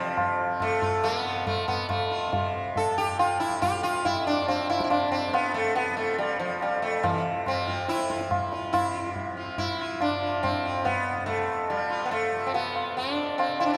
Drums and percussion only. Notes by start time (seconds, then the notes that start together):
0.17 tabla na, tabla ge
0.60 tabla na, tabla ge
0.82 tabla ge
1.04 tabla tin, tabla ge
1.47 tabla na, tabla ge
1.68 tabla ge
1.90 tabla na, tabla ge
2.33 tabla tin, tabla ge
2.76 tabla tin, tabla ge
3.19 tabla na
3.62 tabla na, tabla ge
4.05 tabla tin, tabla ge
4.49 tabla tin, tabla ge
4.70 tabla na
4.80 tabla ke
4.91 tabla na
5.34 tabla na
5.77 tabla tin
5.98 tabla na
6.19 tabla tin
6.61 tabla na
7.04 tabla na, tabla ge
7.46 tabla na, tabla ge
7.67 tabla ge
7.89 tabla te
7.99 tabla te
8.10 tabla ke
8.21 tabla te
8.31 tabla na, tabla ge
8.53 tabla te
8.74 tabla na, tabla ge
9.16 tabla tin, tabla ge
9.58 tabla tin, tabla ge
10.01 tabla na
10.44 tabla na, tabla ge
10.86 tabla tin, tabla ge
11.28 tabla tin, tabla ge
11.70 tabla na
12.12 tabla na
12.54 tabla tin
12.76 tabla na
12.96 tabla tin
13.40 tabla na
13.60 tabla na